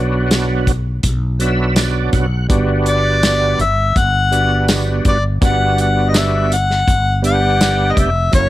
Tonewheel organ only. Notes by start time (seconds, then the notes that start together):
Already playing: F#3 B3 D4 F#4
1.39 F#3 B3 D4 F#4 E5
1.76 D5
2.13 F#5
2.48 G3 B3 D4 F#4
4.31 G3 B3 D4 F#4
5.41 G3 B3 D4 F#4
7.22 G3 B3 D4 G4
8.31 F#3 A#3 C#4 E4